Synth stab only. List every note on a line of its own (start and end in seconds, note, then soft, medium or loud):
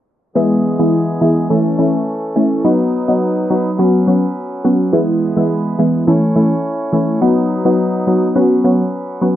0.35 0.76 E3 loud
0.35 0.76 G#3 medium
0.35 0.76 B3 medium
0.35 0.76 E4 loud
0.79 1.18 E3 medium
0.79 1.18 G#3 medium
0.79 1.18 B3 medium
0.79 1.18 E4 medium
1.21 1.48 E3 medium
1.21 1.48 G#3 medium
1.21 1.48 B3 medium
1.21 1.48 E4 medium
1.50 1.77 E3 medium
1.50 1.77 A3 medium
1.50 1.77 C#4 medium
1.50 1.77 E4 loud
1.78 1.97 E3 medium
1.78 1.97 A3 medium
1.78 1.97 C#4 medium
1.78 1.97 E4 medium
2.36 2.62 E3 medium
2.36 2.62 A3 medium
2.36 2.62 C#4 medium
2.36 2.62 E4 medium
2.64 3.04 F#3 medium
2.64 3.04 B3 medium
2.64 3.05 D#4 medium
2.64 3.05 F#4 loud
3.08 3.47 F#3 medium
3.08 3.47 B3 medium
3.08 3.47 D#4 medium
3.08 3.47 F#4 medium
3.50 3.76 F#3 medium
3.50 3.77 B3 medium
3.50 3.77 D#4 medium
3.50 3.77 F#4 medium
3.79 4.05 F#3 medium
3.79 4.05 B3 medium
3.79 4.05 C#4 medium
3.79 4.05 F#4 loud
4.07 4.26 F#3 medium
4.07 4.26 B3 medium
4.07 4.26 C#4 medium
4.07 4.26 F#4 medium
4.64 4.91 F#3 medium
4.64 4.91 B3 medium
4.64 4.91 C#4 medium
4.64 4.91 F#4 medium
4.93 5.33 E3 loud
4.93 5.33 G#3 medium
4.93 5.33 B3 medium
4.93 5.33 E4 loud
5.37 5.75 E3 medium
5.37 5.76 G#3 medium
5.37 5.76 B3 medium
5.37 5.76 E4 medium
5.79 6.05 E3 medium
5.79 6.05 G#3 medium
5.79 6.05 B3 medium
5.79 6.05 E4 medium
6.07 6.34 E3 medium
6.07 6.34 A3 medium
6.07 6.34 C#4 medium
6.07 6.34 E4 loud
6.36 6.54 E3 medium
6.36 6.54 A3 medium
6.36 6.54 C#4 medium
6.36 6.54 E4 medium
6.93 7.19 E3 medium
6.93 7.19 A3 medium
6.93 7.19 C#4 medium
6.93 7.20 E4 medium
7.21 7.61 F#3 loud
7.21 7.62 B3 medium
7.21 7.62 D#4 medium
7.21 7.62 F#4 loud
7.65 8.04 F#3 medium
7.65 8.04 B3 medium
7.65 8.04 D#4 medium
7.65 8.04 F#4 medium
8.07 8.34 F#3 medium
8.07 8.34 B3 medium
8.07 8.34 D#4 medium
8.07 8.34 F#4 medium
8.35 8.62 F#3 medium
8.35 8.62 B3 medium
8.35 8.62 C#4 medium
8.35 8.62 F#4 loud
8.64 8.83 F#3 medium
8.64 8.83 B3 medium
8.64 8.83 C#4 medium
8.64 8.83 F#4 medium
9.21 9.36 F#3 medium
9.21 9.36 B3 medium
9.21 9.36 C#4 medium
9.21 9.36 F#4 medium